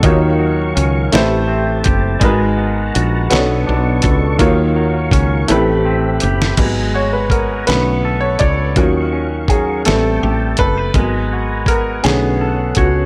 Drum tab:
CC |------------|------------|------------|x-----------|
HH |x---x-x---x-|x---x-x---x-|x---x-x---x-|x---x-x---x-|
SD |------o-----|------o-----|-----------o|------o-----|
BD |o---------o-|o---------o-|o---o-------|o---o-----o-|

CC |------------|------------|
HH |x---x-x---x-|x---x-x---x-|
SD |------o-----|------o-----|
BD |o---o-----o-|o---o-----o-|